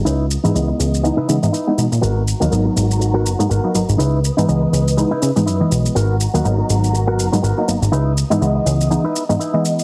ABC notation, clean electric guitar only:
X:1
M:4/4
L:1/16
Q:"Swing 16ths" 1/4=122
K:C#dor
V:1 name="Clean electric guitar"
[DEB]2 z [DEB] z4 z [DEB] z2 [DEB]2 z2 | [B,FA]2 z [B,FA] z4 z [B,FA] z2 [B,FA]2 z2 | [DEB]2 z [DEB] z4 z [DEB] z2 [DEB]2 z2 | [B,FA]2 z [B,FA] z4 z [B,FA] z2 [B,FA]2 z2 |
[DEB]2 z [DEB] z4 z [DEB] z2 [DEB]2 z2 |]